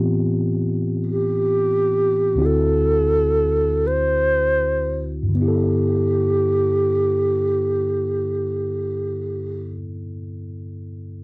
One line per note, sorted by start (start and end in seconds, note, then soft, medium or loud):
0.00 2.35 A2 soft
0.00 2.37 E3 soft
0.00 2.38 B3 soft
0.00 2.37 C4 soft
0.00 2.40 F4 soft
0.00 2.41 G4 soft
1.07 2.47 G4 medium
2.35 5.33 D2 soft
2.35 5.28 D3 soft
2.35 5.35 C4 soft
2.35 5.35 E4 soft
2.40 5.36 F#4 soft
2.45 3.89 A4 medium
3.87 5.12 C5 medium
5.23 9.63 G2 soft
5.29 9.69 D3 soft
5.35 9.75 B3 soft
5.35 9.75 G4 medium
5.42 9.82 E4 soft
5.48 9.88 A4 medium